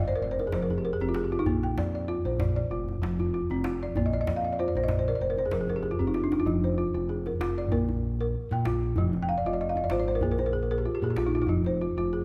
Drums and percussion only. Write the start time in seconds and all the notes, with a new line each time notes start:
0.08 djembe slap
0.39 djembe tone
0.52 djembe slap
0.70 djembe bass
1.00 djembe tone
1.14 djembe slap
1.46 djembe slap, djembe bass
1.63 djembe tone
1.78 djembe slap
2.26 djembe tone
2.40 djembe slap, djembe bass
2.57 djembe slap
2.88 djembe tone
3.03 djembe slap
3.19 djembe bass
3.50 djembe tone
3.64 djembe slap
3.96 djembe bass
4.13 djembe slap, djembe tone
4.27 djembe slap
4.59 djembe slap
4.75 djembe tone
4.88 djembe slap, djembe bass
5.37 djembe slap, djembe tone
5.51 djembe slap
5.68 djembe bass
5.83 djembe bass
6.01 djembe bass
6.14 djembe slap
6.32 djembe slap
6.47 djembe bass
6.64 djembe tone
7.26 djembe tone
7.41 djembe slap
7.59 djembe slap
7.72 djembe bass
7.89 djembe slap, djembe tone
8.21 djembe slap
8.34 djembe slap
8.51 djembe tone
8.65 djembe slap
8.96 djembe bass
9.13 djembe tone
9.76 djembe tone
9.90 djembe slap
10.07 djembe slap
10.21 djembe bass
10.38 djembe slap, djembe tone
10.70 djembe slap
10.85 djembe slap
11.03 djembe tone
11.16 djembe slap
11.47 djembe bass
11.64 djembe tone